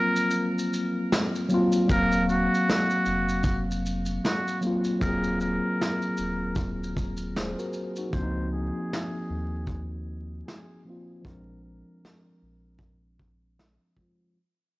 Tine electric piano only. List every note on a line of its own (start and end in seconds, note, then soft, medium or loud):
0.00 1.48 F#3 medium
0.00 1.50 A#3 medium
0.00 1.52 C4 medium
0.00 1.54 F4 medium
1.48 1.76 F#3 medium
1.48 1.77 A#3 medium
1.48 1.77 C4 medium
1.54 1.79 F4 loud
1.88 2.85 F#3 medium
1.88 2.86 A#3 medium
1.88 2.87 C4 medium
1.93 2.88 F5 medium
4.61 4.88 F#3 medium
4.61 4.89 A#3 medium
4.61 4.90 C4 medium
4.67 4.91 F4 medium
5.00 5.97 F#3 medium
5.00 5.98 A#3 medium
5.00 5.99 C4 medium
5.05 6.00 G#4 medium
7.37 7.58 G#4 medium
7.37 7.58 C5 medium
7.59 7.96 F#4 medium
7.59 7.95 A#4 medium
7.98 8.21 D#4 medium
7.98 8.35 F#4 medium
8.11 9.08 F3 medium
8.11 9.09 A#3 medium
8.15 9.10 C4 medium
8.15 8.22 D4 medium
8.22 9.14 D#4 medium
10.85 11.11 F3 medium
10.85 11.12 A#3 medium
10.85 11.13 C4 medium
10.90 11.14 F4 medium
11.22 12.20 F3 medium
11.22 12.21 G#3 medium
11.22 12.22 C4 medium
11.27 12.23 D4 medium
13.96 14.23 F3 medium
13.96 14.24 G#3 medium
13.96 14.25 C4 medium
14.02 14.26 F4 medium